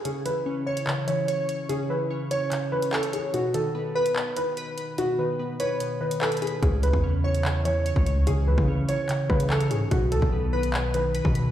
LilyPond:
<<
  \new Staff \with { instrumentName = "Grand piano" } { \time 4/4 \key cis \minor \tempo 4 = 146 gis'8 b'4 cis''4 cis''4. | gis'8 b'4 cis''4 b'8 a'8 gis'8 | fis'8 a'4 b'4 b'4. | fis'8 b'4 cis''4 b'8 a'8 gis'8 |
gis'8 b'4 cis''4 cis''4. | gis'8 b'4 cis''4 b'8 a'8 gis'8 | fis'8 a'4 b'4 b'4. | }
  \new Staff \with { instrumentName = "Synth keys" } { \clef bass \time 4/4 \key cis \minor cis8 e8 cis'8 cis''8 cis8 e8 cis''8 cis''8 | cis8 e8 cis'8 cis''8 cis8 e8 cis''8 cis''8 | b,8 dis8 b8 b'8 b,8 dis8 b'8 b'8 | b,8 dis8 b8 b'8 b,8 dis8 b'8 b'8 |
cis8 e8 cis'8 cis''8 cis8 e8 cis''8 cis''8 | cis8 e8 cis'8 cis''8 cis8 e8 cis''8 cis''8 | b,8 dis8 b8 b'8 b,8 dis8 b'8 b'8 | }
  \new Staff \with { instrumentName = "808-style bass" } { \clef bass \time 4/4 \key cis \minor r1 | r1 | r1 | r1 |
cis,8. e,2~ e,8 cis,8. | cis,8. cis4 r8. cis4 gis,8 | b,,8 cis,16 b,,2~ b,,8 b,8. | }
  \new DrumStaff \with { instrumentName = "Drums" } \drummode { \time 4/4 hh8 hh8 r8. hh16 hc8 hh8 hh8 hh8 | hh4 r8 hh8 <hc hh>8. hh16 hc16 hh16 hh8 | hh8 hh8 r8. hh16 hc8 hh8 hh8 hh8 | hh4 r8 hh8 hh8. hh16 hc16 hh32 hh32 hh32 hh16. |
<hh bd>8 hh16 bd16 r8. hh16 hc8 hh8 hh16 bd16 hh8 | hh8. bd16 r8 hh8 <hc hh>8 bd16 hh16 hc16 hh16 hh8 | <hh bd>8 hh16 bd16 r8. hh16 hc8 hh8 hh16 bd16 hh8 | }
>>